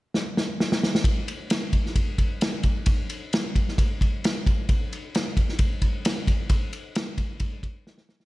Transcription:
0.14 snare
0.37 snare
0.60 snare
0.72 snare
0.83 snare
0.95 snare
1.04 kick, ride
1.28 ride
1.50 snare, ride
1.73 kick, ride
1.86 snare
1.96 kick, ride
2.18 kick, ride
2.41 snare, ride
2.63 kick, ride
2.86 kick, ride
3.10 ride
3.33 snare, ride
3.56 kick, ride
3.68 snare
3.78 kick, ride
4.01 kick, ride
4.24 snare, ride
4.46 kick, ride
4.69 kick, ride
4.93 ride
5.15 snare, ride
5.37 kick, ride
5.49 snare
5.59 kick, ride
5.82 kick, ride
6.05 snare, ride
6.27 kick, ride
6.50 kick, ride
6.73 ride
6.95 snare, ride
7.18 kick, ride
7.40 kick, ride
7.63 kick, ride
7.87 snare
7.98 snare
8.09 snare
8.20 snare

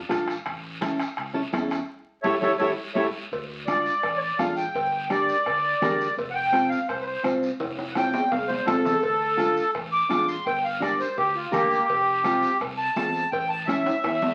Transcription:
0.09 A1 D4 F4 A4, bombo low, bombo rim, high conga, high timbale, short guiro
0.28 bombo rim, high timbale, short guiro
0.46 A1, bombo low, bombo rim, high conga, high timbale, long guiro
0.81 C#4 E4 A4, bombo rim, high conga, high timbale, short guiro
0.99 bombo rim, high timbale, short guiro
1.17 C#2, bombo rim, high conga, high timbale, long guiro
1.34 C#4 E4 A4
1.53 E2 C#4 E4 A4, bombo low, bombo rim, high conga, high timbale, low timbale, short guiro
1.71 bombo rim, high timbale, short guiro
2.23 A1 E4 G4 A4 C#5 E5, bombo low, high conga, high timbale, long guiro
2.40 A1 E4 G4 A4 C#5 E5, bombo low, high conga, high timbale, long guiro
2.58 A1 E4 G4 A4 C#5 E5, bombo low, high conga, high timbale, long guiro
2.95 A1 E4 G4 A4 C#5 E5, bombo low, high conga, high timbale, long guiro
3.32 D2, bombo low, cowbell, high conga, long guiro
3.66 D4 F4 A4 D5, bombo rim, high conga, short guiro
3.86 short guiro
4.03 A1, bombo low, bombo rim, cowbell, high conga, long guiro
4.17 C#5 D5
4.39 A1 D4 F4 A4 F5, bombo low, bombo rim, high conga, low timbale, short guiro
4.56 G5, short guiro
4.75 G1, bombo low, cowbell, high conga, long guiro
5.10 D4 G4 A#4 D5, bombo rim, high conga, short guiro
5.29 short guiro
5.46 D2, bombo low, bombo rim, cowbell, high conga, long guiro
5.82 D2 D4 G4 A#4, bombo low, bombo rim, high conga, low conga, low timbale, short guiro
6.01 short guiro
6.17 F1, bombo low, cowbell, high conga, long guiro
6.31 F#5 G5
6.52 C4 F4 A4, bombo rim, high conga, short guiro
6.69 F5, short guiro
6.88 C2 C5, bombo low, bombo rim, cowbell, high conga, long guiro
7.02 B4
7.06 C5
7.23 C2 C4 F4 C5, bombo low, bombo rim, high conga, short guiro
7.43 short guiro
7.60 F1, bombo low, cowbell, high conga, high timbale, long guiro
7.79 high timbale
7.92 C4 F4 F#5, bombo rim, high conga
7.96 A4 G5, high timbale, short guiro
8.13 low timbale, short guiro
8.31 C2 F5, bombo low, cowbell, high conga, low timbale, long guiro
8.48 C5, high conga, low timbale
8.66 C2 C4 F4 A4, bombo low, bombo rim, high conga, low timbale, short guiro
8.85 low conga, low timbale, short guiro
9.03 D2, bombo low, cowbell, high conga, long guiro
9.37 D4 F4 A4, bombo rim, high conga, short guiro
9.57 short guiro
9.75 A1, bombo low, bombo rim, cowbell, high conga, long guiro
9.92 D6
10.09 A1 D4 F4 A4, bombo rim, high conga, low timbale, short guiro
10.28 C6, short guiro
10.46 G1 G5, bombo low, cowbell, high conga, long guiro
10.64 F5
10.80 D4 G4 A#4 D5, bombo rim, high conga, short guiro
11.00 C5, short guiro
11.18 D2 G4, bombo low, cowbell, high conga, long guiro
11.36 F4
11.51 D2 A#3 D4 G4 A#4, bombo low, bombo rim, high conga, low conga, short guiro
11.71 short guiro
11.89 F1, bombo low, cowbell, high conga, long guiro
12.24 C4 F4 A4, bombo rim, high conga, short guiro
12.42 short guiro
12.60 C2, bombo low, bombo rim, cowbell, high conga, long guiro
12.78 A5
12.96 E2 C4 F4 A4, bombo rim, high conga, low timbale, short guiro
13.14 short guiro
13.32 A1 G5, bombo low, cowbell, high conga, long guiro
13.49 A5
13.67 C#4 E4 A4 E5, bombo rim, high conga, short guiro
13.86 high timbale, short guiro
14.04 E2, bombo low, bombo rim, cowbell, high conga, high timbale, long guiro
14.22 high conga, low timbale

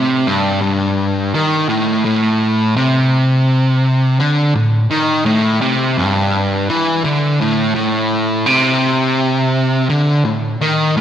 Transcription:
Already playing: C3
0.27 G2
0.61 G2
1.34 D#3
1.69 A2
2.05 A2
2.76 C3
4.20 D3
4.55 A2
4.91 D#3
5.26 A2
5.62 C3
5.98 G2
6.69 E3
7.04 D3
7.41 A2
7.75 A2
8.46 C3
9.90 D3
10.25 A2
10.61 D#3
10.97 A2

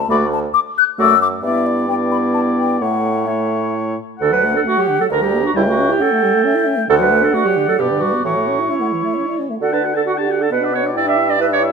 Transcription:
0.08 D2 A3 F#4 D5 B5
0.33 A5
0.54 D6
0.78 F#6
0.98 F#2 A3 F#4 D5 E6
1.22 D6
1.42 G2 B3 E4 D5 E5
1.66 D5
1.88 B3 E4 D5 G5
2.11 B5
2.34 A5
2.59 G5
2.81 A2 A3 E4 C#5 F#5
3.27 A3 E4 C#5 E5
4.19 D2 D3 A4 F#5
4.32 F#3 B4
4.43 A3
4.55 D4 A4
4.65 A3 F#4 F#5
4.77 F#3 G4
4.89 D3
4.99 F#3 A4
5.10 D2 D3 A#4 D5 A#5
5.22 G3 G4
5.33 A#3
5.44 D4 F#4
5.55 C#2 G3 E4 E5 G5
5.67 A3 F#4
5.79 C#4
5.89 E4 G4
6.00 C#4 A4 F#5
6.12 A3
6.23 G3
6.34 A3
6.44 C#4 E5
6.55 E4
6.66 C#4
6.77 A3
6.88 D2 D3 A4 F#5
6.99 F#3 B4
7.11 A3
7.22 D4 A4
7.34 A3 F#4 D5
7.45 F#3 G4
7.57 D3
7.68 F#3 A4
7.78 G2 B2 G4 B4 D5
7.91 D3
8.01 G3 F#4
8.13 B3
8.24 A2 E3 F#4 C#5
8.36 A3
8.47 C#4
8.59 E4
8.69 C#4 E4 E5
8.81 A3 F#5
8.93 E3
9.04 A3 E5
9.14 C#4 C#5
9.27 E4 D5
9.39 C#4
9.49 A3 E5
9.60 D3 F#4 A4 F#5
9.72 D4 B4 A5
9.84 F#4 F#5
9.94 D4 A4 A5
10.05 F#4 F#5
10.16 D4 G4 A5
10.28 F#4 F#5
10.40 D4 A4 A5
10.50 B2 B3 B4 D5 F#5
10.61 D4 D5
10.72 B3 C#5 F#5
10.83 D4 D5
10.94 G2 E4 D5 E5 G5
11.06 D4 D5 E5
11.17 E4 E5
11.28 D4 D5
11.39 E4 B4 E5
11.50 D4 C#5 D5
11.61 E4 E5

